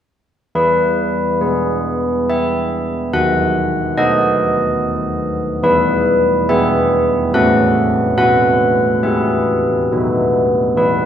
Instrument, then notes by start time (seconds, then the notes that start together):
church bells
0.55 E3 B4
1.41 B3 G#4
2.30 E5
3.13 D#3 F#5
3.97 B3 A4 D#5
5.63 E3 B4
6.49 B3 G#4 E5
7.34 A3 C#4 A4 F#5
8.18 B3 F#5
9.03 E4 G#4 E5
9.92 B3 D#4 F#4
10.77 E3 B4